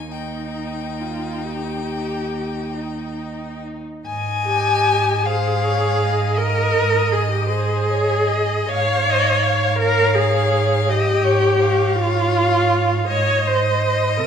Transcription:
Already playing: D#2 A#3 D#4 G#5
0.12 D#4 G5
1.00 F4
1.45 G4
2.74 D#4
4.06 G#2 D#5 G#5
4.45 G4
5.23 G#4 C5 F5
5.64 C#5
6.03 D#5
6.37 A#4 D#5
7.12 G#4
7.31 G4
7.49 G#4 C5
7.90 C#5
8.27 D#5
8.69 G#2 C#5 F5
9.10 D#5
9.43 F5
9.78 A#4 C#5 F5
10.15 G#4
10.88 G4 D#5
11.23 C#5
11.59 C#5 F5
11.96 F4
13.07 G#2 C#5 D#5
13.46 C5
14.19 C3 A#4

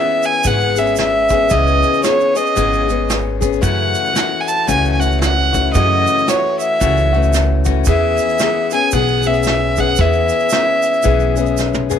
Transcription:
Already playing: E3 B3 C#4 G#4 E5
0.23 G#5, closed hi-hat, shaker
0.43 G#1 C#3 E3 B3 C#4 G#4 F#5, kick, closed hi-hat, shaker
0.60 shaker
0.76 B3 C#4 G#4 E5, closed hi-hat, shaker
0.86 shaker
0.96 E5, snare, closed hi-hat, shaker
1.29 B3 C#4 G#4, kick, closed hi-hat, shaker
1.49 C#2 C#3 E3 B3 C#4 G#4 D#5, kick, closed hi-hat, shaker
1.67 shaker
1.83 closed hi-hat, shaker
1.93 shaker
2.03 E3 B3 C#4 G#4 C#5, snare, closed hi-hat, shaker
2.20 shaker
2.35 B3 C#4 G#4 D#5, closed hi-hat, shaker
2.46 shaker
2.55 G#1 C#3 E3 B3 C#4 G#4, kick, closed hi-hat, shaker
2.73 shaker
2.88 B3 C#4 G#4, closed hi-hat, shaker
3.10 snare, closed hi-hat, shaker
3.41 B3 C#4 G#4, kick, closed hi-hat, shaker
3.53 shaker
3.61 F#2 C#3 E3 A3 C#4 F#4 F#5, kick, closed hi-hat, shaker
3.95 closed hi-hat, shaker
4.05 shaker
4.13 E3 A3 C#4 F#4, snare, closed hi-hat, shaker
4.41 G#5
4.48 A5, closed hi-hat, shaker
4.66 C#2 F#2 C#3 E3 A3 C#4 F#4 G#5, kick, closed hi-hat, shaker
4.85 shaker
4.92 G#5
5.00 E3 A3 C#4 F#4 F#5, closed hi-hat, shaker
5.12 shaker
5.21 F#5, snare, closed hi-hat, shaker
5.53 E3 A3 C#4 F#4, kick, closed hi-hat, shaker
5.74 F#2 C#3 E3 A3 C#4 F#4 D#5, kick, closed hi-hat, shaker
6.07 closed hi-hat, shaker
6.18 shaker
6.27 E3 A3 C#4 F#4 C#5, snare, closed hi-hat, shaker
6.60 E5, closed hi-hat, shaker
6.80 C#2 F#2 C#3 E3 A3 C#4 F#4, kick, closed hi-hat, shaker
6.97 shaker
7.13 E3 A3 C#4 F#4, closed hi-hat
7.23 shaker
7.33 snare, closed hi-hat, shaker
7.65 E3 A3 C#4 F#4, kick, closed hi-hat, shaker
7.85 E2 E3 B3 C#4 G#4 E5, kick, closed hi-hat, shaker
8.18 closed hi-hat, shaker
8.29 shaker
8.39 E3 B3 C#4 G#4, snare, closed hi-hat, shaker
8.71 B3 C#4 G#4 G#5, closed hi-hat, shaker
8.91 B1 E3 B3 C#4 G#4 F#5, kick, closed hi-hat, shaker
9.08 shaker
9.23 C#4 G#4, closed hi-hat, shaker
9.27 B3 E5
9.33 shaker
9.43 snare, closed hi-hat, shaker
9.76 B3 C#4 G#4 F#5, kick, closed hi-hat, shaker
9.96 E2 E3 B3 C#4 G#4, kick, closed hi-hat, shaker
10.01 E5
10.13 shaker
10.29 closed hi-hat, shaker
10.40 shaker
10.49 E3 B3 C#4 G#4, snare, closed hi-hat, shaker
10.82 closed hi-hat, shaker
10.93 shaker
11.03 B1 E3 B3 C#4 G#4, kick, closed hi-hat, shaker
11.20 shaker
11.36 B3 C#4 G#4, closed hi-hat, shaker
11.46 shaker
11.57 snare, shaker
11.74 high tom, shaker
11.90 B3 C#4 G#4, mid tom, shaker

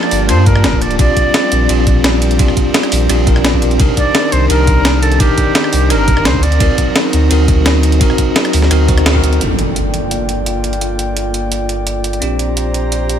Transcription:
Already playing: F3 A#3 D4 F4 G4 A4 D5 A5
0.03 cross-stick
0.11 G1, open hi-hat
0.27 G2 A#3 D4 F4 C5 A5, cross-stick, closed hi-hat, ride bell
0.46 A#4, kick, closed hi-hat
0.56 cross-stick
0.64 D1, snare, closed hi-hat, ride bell
0.73 kick
0.82 D5, closed hi-hat
0.91 closed hi-hat
0.97 A#1 G3 C4 D4 F4 G4 A#4 D5, kick, closed hi-hat, ride bell
1.17 kick, closed hi-hat
1.34 snare, closed hi-hat, ride bell
1.52 A#1, closed hi-hat
1.67 A#1 C4 D4 F4 G4, closed hi-hat, ride bell
1.87 kick, closed hi-hat
2.04 snare, closed hi-hat, ride bell
2.22 closed hi-hat
2.31 closed hi-hat
2.38 C4 D4 F4 G4, kick, closed hi-hat, ride bell
2.48 cross-stick
2.57 kick, closed hi-hat
2.74 snare, closed hi-hat, ride bell
2.83 cross-stick, closed hi-hat
2.92 A#1, open hi-hat
3.09 A#1 C4 D4 F4 G4, cross-stick, closed hi-hat, ride bell
3.26 C4 D4 F4 A#4, kick, closed hi-hat
3.36 cross-stick
3.45 snare, closed hi-hat, ride bell
3.53 C4 D4 F4 G4, kick
3.62 closed hi-hat
3.71 closed hi-hat
3.78 C2 D#3 D4 D#4 G4 A#4, kick, closed hi-hat, ride bell
3.97 D5, kick, closed hi-hat
4.15 snare, closed hi-hat, ride bell
4.32 C2 C5, closed hi-hat
4.48 C2 D4 D#4 G4 A#4, closed hi-hat, ride bell
4.67 kick, closed hi-hat
4.85 snare, closed hi-hat, ride bell
5.02 A4, closed hi-hat
5.12 closed hi-hat
5.18 D4 D#4 G4 A#4, kick, closed hi-hat, ride bell
5.38 kick, closed hi-hat
5.55 snare, closed hi-hat, ride bell
5.64 cross-stick
5.73 C2, open hi-hat
5.89 G1 D4 D#4 G4 A#4, cross-stick, closed hi-hat, ride bell
6.08 kick, closed hi-hat
6.17 cross-stick
6.25 D2 C5, snare, closed hi-hat, ride bell
6.34 kick
6.43 F#3 D#4 D5, closed hi-hat
6.52 closed hi-hat
6.59 D2 C4 D#4 F#4 A#4, kick, closed hi-hat, ride bell
6.78 kick, closed hi-hat
6.96 snare, closed hi-hat, ride bell
7.13 D2, closed hi-hat
7.29 D2 C4 D#4 F#4 A#4, closed hi-hat, ride bell
7.48 kick, closed hi-hat
7.66 snare, closed hi-hat, ride bell
7.83 closed hi-hat
7.92 closed hi-hat
7.99 C4 D#4 F#4 A#4, kick, closed hi-hat, ride bell
8.10 cross-stick
8.18 kick, closed hi-hat
8.36 snare, closed hi-hat, ride bell
8.45 cross-stick, closed hi-hat
8.53 D2, open hi-hat
8.62 snare
8.70 D2 C4 D#4 F#4 A#4, cross-stick, closed hi-hat, ride bell
8.88 C4 D#4 F#4 C5, kick, closed hi-hat
8.98 cross-stick, closed hi-hat
9.06 snare, closed hi-hat, ride bell
9.14 C4 D#4 F#4 A#4, kick
9.24 closed hi-hat
9.33 closed hi-hat
9.39 G1 A#3 D4 F4 A4 D5 G5, closed hi-hat, impact
9.59 closed hi-hat
9.76 closed hi-hat
9.94 closed hi-hat
10.11 closed hi-hat
10.29 closed hi-hat
10.46 closed hi-hat
10.64 closed hi-hat
10.73 closed hi-hat
10.81 closed hi-hat
10.99 closed hi-hat
11.17 closed hi-hat
11.34 closed hi-hat
11.52 closed hi-hat
11.69 closed hi-hat
11.87 closed hi-hat
12.04 closed hi-hat
12.13 closed hi-hat
12.20 A#1 C4 D4 F4 G4 C5 A#5, closed hi-hat
12.39 closed hi-hat
12.57 closed hi-hat
12.74 closed hi-hat
12.92 closed hi-hat
13.09 closed hi-hat

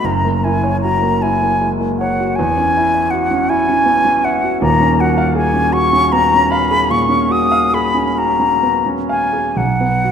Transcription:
0.04 F#1 F#2 A#5
0.25 A#3
0.44 E4 G#5
0.64 C#5
0.81 F#4 A#5
1.02 A#3
1.22 E4 G#5
1.42 A#3
1.61 G#3
1.80 A#3
1.99 C#5 F#5
2.20 F#4
2.36 E2 G#5
2.57 C#4
2.77 E4
2.95 E5
3.11 F#4 F#5
3.31 C#4
3.49 E4 G#5
3.69 C#4
3.86 B3
4.05 C#4
4.24 E5 F#5
4.44 F#4
4.61 D#1 D#2 A#5
4.80 C#4
5.00 F#4 F#5
5.18 F5
5.35 G#4 G#5
5.54 C#4
5.72 F#4 C#6
5.93 C#4
6.12 B3 A#5
6.33 C#4
6.50 F5 B5
6.71 G#4
6.90 A#2 C#6
7.10 C#4
7.30 F#4 D#6
7.52 F5
7.74 G#4 B5
7.95 C#4
8.17 F#4 A#5
8.40 C#4
8.63 B3
8.86 C#4
9.09 F5 G#5
9.33 G#4
9.56 B1 F#5
9.81 B3
10.04 F#4

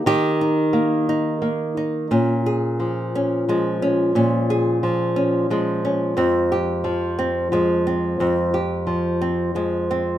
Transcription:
Already playing: A#3
0.06 D#3 G4
0.41 D#4
0.73 A#3
1.09 D#4
1.42 A#3
1.77 D#4
2.11 A#2 C#4
2.46 G#4
2.80 F3
3.15 C#4
3.49 F3 G#3
3.82 C#4
4.15 A#2 C#4
4.50 G#4
4.83 F3
5.16 C#4
5.50 F3 G#3
5.85 C#4
6.17 F2 C4
6.52 G4
6.84 F3
7.19 C4
7.52 F3 G#3
7.87 C4
8.20 F2 C4
8.54 G4
8.87 F3
9.21 C4
9.55 F3 G#3
9.91 C4

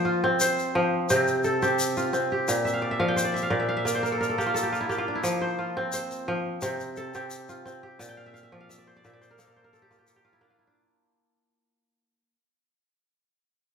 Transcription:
Already playing: F3 A#3 C5 F5 G5
0.05 F4
0.24 C4
0.40 C5, shaker
0.59 shaker
0.75 F3
1.10 C3 C4, shaker
1.28 shaker
1.44 A4, shaker
1.62 C4 G4, shaker
1.79 shaker
1.97 F4, shaker
2.13 C4, shaker
2.32 G4
2.48 A#2, shaker
2.65 E5, shaker
2.73 F5
2.82 D5
2.91 E5
3.00 F3 F5
3.08 G5
3.16 C5, shaker
3.25 D5
3.34 E5, shaker
3.43 F5
3.50 A#2 D5
3.60 E5
3.69 F5
3.77 E5
3.85 A#3 D5, shaker
3.95 C5
4.03 A#4, shaker
4.12 A4
4.21 A#4, shaker
4.30 A4
4.38 A#3 G4, shaker
4.46 F4
4.54 A4, shaker
4.63 G4
4.72 F4, shaker
4.81 E4
4.89 A#3 G4, shaker
4.98 F4
5.08 D4
5.15 E4
5.24 F3, shaker
5.41 C5
5.59 F4
5.77 C4
5.93 C5, shaker
6.11 shaker
6.28 F3
6.62 C3 C4, shaker
6.80 shaker
6.96 A4, shaker
7.14 C4 G4, shaker
7.31 shaker
7.49 F4, shaker
7.65 C4, shaker
7.83 G4
7.99 A#2 A5, shaker
8.09 G5
8.17 F5
8.26 E5
8.34 F5, shaker
8.43 E5
8.52 F3 D5
8.61 F5
8.69 E5, shaker
8.78 D5
8.87 C5
8.96 D5
9.05 A#2 E5, shaker
9.13 D5
9.21 C5, shaker
9.31 A#4
9.38 A#3 A4, shaker
9.47 A#4
9.56 C5
9.64 A#4
9.73 A4, shaker
9.82 G4
9.91 A#3 F4, shaker
9.99 G4
10.07 A4, shaker
10.16 G4
10.25 F4
10.33 E4
10.41 A#3 D4
10.50 F4
10.59 E4
10.67 D4

